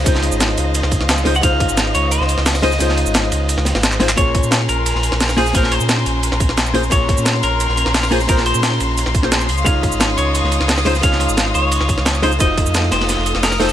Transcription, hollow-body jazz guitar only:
X:1
M:4/4
L:1/16
Q:1/4=175
K:Bbm
V:1 name="Hollow-body jazz guitar"
[A,DEFc]12- [A,DEFc]2 [A,DEFc] z | [A,DEFc]12- [A,DEFc]2 [A,DEFc] z | [A,DEFc]12- [A,DEFc]2 [A,DEFc] z | [B,DFAd]12- [B,DFAd]2 [B,DFAc] z |
[B,DFAc]12- [B,DFAc]2 [B,DFAc] z | [B,DFAd]12- [B,DFAd]2 [B,DFAc] z | [B,DFAc]8- [B,DFAc]3 [B,DFAc]3 z2 | [A,DEFd]12- [A,DEFd]2 [A,DEFc] z |
[A,DEFd]12- [A,DEFd]2 [A,DEFc] z | [=A,EFGc]12- [A,EFGc]2 [A,EFGc] z |]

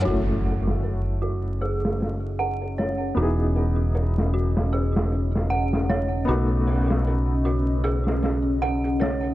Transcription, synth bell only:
X:1
M:4/4
L:1/8
Q:"Swing 16ths" 1/4=77
K:F#dor
V:1 name="Synth bell"
F3 F G z f c | F3 F G z f c | F3 F G z f c |]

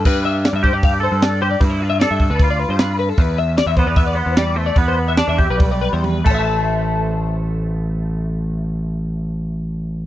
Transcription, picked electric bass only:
X:1
M:4/4
L:1/16
Q:1/4=147
K:Am
V:1 name="Picked electric bass" clef=bass
G,,4- G,, G,,2 G,,4 G,,4- G,, | G,,4- G,, G,,2 D,,4 G,,4- G,, | E,,4- E,, E,,2 E,,4 E,,4- E,, | E,,4- E,, E,,2 B,,,4 E,,3 A,,,2- |
A,,,16- | A,,,16 |]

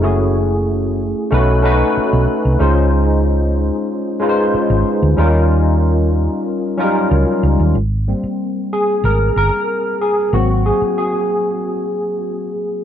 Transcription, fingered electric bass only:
X:1
M:4/4
L:1/16
Q:1/4=93
K:Dblyd
V:1 name="Fingered electric bass" clef=bass
_G,,,6- G,,, z =B,,,4 z B,,, z C,, | D,,6- D,, z6 A,,, z =D,, | E,,6- E,, z4 z D,, z D,, E,, | A,,,3 z4 z A,,,2 G,,, z4 z |
A,,,3 z12 z |]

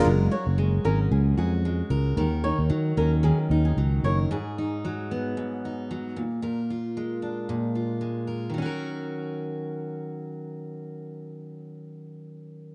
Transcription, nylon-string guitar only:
X:1
M:4/4
L:1/16
Q:"Swing 16ths" 1/4=113
K:Ebm
V:1 name="Nylon-string guitar"
z2 d z3 B z A2 A z4 z | z2 d z3 B z A z2 A z2 d z | z16 | z16 |
z16 | z16 |]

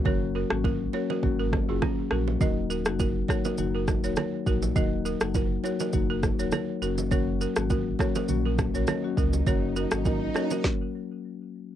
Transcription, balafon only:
X:1
M:4/4
L:1/16
Q:"Swing 16ths" 1/4=102
K:Gb
V:1 name="Balafon"
[Bd] z [GB] z [GB] z [Bd] [GB] z [GB] z [FA] [DG] z [GB] z | [Be] z [GB] z [GB] z [Bd] [GB] z [GB] z [Bd] [Bd] z [GB] z | [Be] z [GB] z [GB] z [Bd] [GB] z [GB] z [Bd] [Bd] z [GB] z | [Bd] z [GB] z [GB] z [Bd] [GB] z [GB] z [Bd] [Bd] z [GB] z |
[Bd] z [GB] z [GB] z [Bd] [GB] z8 |]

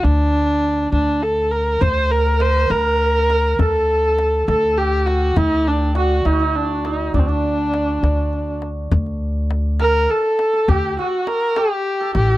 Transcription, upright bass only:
X:1
M:6/8
L:1/8
Q:3/8=68
K:none
V:1 name="Upright bass" clef=bass
D,,3 D,,3 | D,,3 D,,3 | D,,3 D,,3 | D,,3 D,,3 |
D,,3 D,,3 | D,,4 z2 | D,, z4 A,,, |]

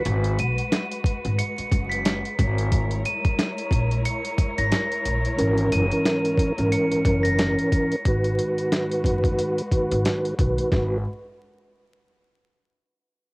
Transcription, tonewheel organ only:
X:1
M:4/4
L:1/16
Q:"Swing 16ths" 1/4=90
K:G#m
V:1 name="Tonewheel organ" clef=bass
z16 | z16 | [G,,E,CA]3 [G,,E,CA]4 [G,,E,CA]8 z | [G,,D,FB]8- [G,,D,FB] z [G,,D,FB]4 [G,,D,FB]2 |
[G,,D,FB]2 z12 z2 |]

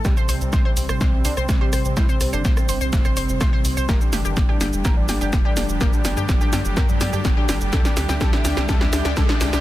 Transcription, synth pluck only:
X:1
M:4/4
L:1/16
Q:1/4=125
K:Gmix
V:1 name="Synth pluck"
z c c z c c z c c z c c z c c z | c c z c c z c c z c c z c c z c | G z G G z G G z G z G G z G G z | G z G G z G G z G z G G z G G z |
G z G G G z G G G z G G G z G G |]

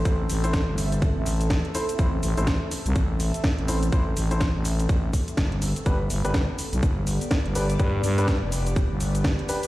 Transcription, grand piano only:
X:1
M:4/4
L:1/16
Q:"Swing 16ths" 1/4=124
K:Am
V:1 name="Grand piano"
[EAc] z2 [EAc] z8 z2 [EAc] z | [EAc] z2 [EAc] z8 z2 [EAc] z | [EAc] z2 [EAc] z12 | [DGB] z2 [DGB] z8 z2 [DGB] z |
[DGB] z2 [DGB] z8 z2 [DGB] z |]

